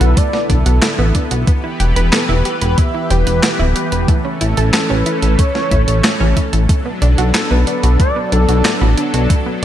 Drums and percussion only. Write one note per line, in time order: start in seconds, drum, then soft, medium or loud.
0.01 closed hi-hat medium
0.17 kick loud
0.17 closed hi-hat loud
0.33 snare soft
0.50 kick medium
0.50 closed hi-hat medium
0.66 closed hi-hat medium
0.82 snare loud
0.82 clap medium
0.82 closed hi-hat loud
1.15 kick medium
1.15 closed hi-hat medium
1.31 closed hi-hat medium
1.47 kick loud
1.47 closed hi-hat loud
1.80 closed hi-hat medium
1.96 closed hi-hat medium
2.13 snare loud
2.13 clap medium
2.13 closed hi-hat medium
2.45 closed hi-hat medium
2.62 closed hi-hat medium
2.78 kick loud
2.78 closed hi-hat loud
3.11 closed hi-hat medium
3.27 closed hi-hat medium
3.43 snare loud
3.43 clap medium
3.43 closed hi-hat medium
3.76 closed hi-hat medium
3.92 closed hi-hat medium
4.08 kick loud
4.08 closed hi-hat medium
4.41 closed hi-hat medium
4.57 closed hi-hat medium
4.74 snare loud
4.74 clap medium
4.74 closed hi-hat medium
5.06 closed hi-hat medium
5.22 closed hi-hat medium
5.39 kick loud
5.39 closed hi-hat medium
5.55 snare soft
5.71 kick medium
5.71 closed hi-hat medium
5.88 closed hi-hat medium
6.04 snare loud
6.04 clap medium
6.04 closed hi-hat medium
6.37 kick medium
6.37 closed hi-hat medium
6.53 closed hi-hat medium
6.69 kick loud
6.69 closed hi-hat medium
7.02 closed hi-hat medium
7.18 closed hi-hat medium
7.34 snare loud
7.34 clap medium
7.34 closed hi-hat medium
7.67 closed hi-hat medium
7.83 closed hi-hat medium
8.00 kick loud
8.00 closed hi-hat medium
8.32 closed hi-hat medium
8.49 closed hi-hat medium
8.65 snare loud
8.65 clap medium
8.65 closed hi-hat medium
8.98 closed hi-hat medium
9.14 closed hi-hat medium
9.30 kick loud
9.30 closed hi-hat medium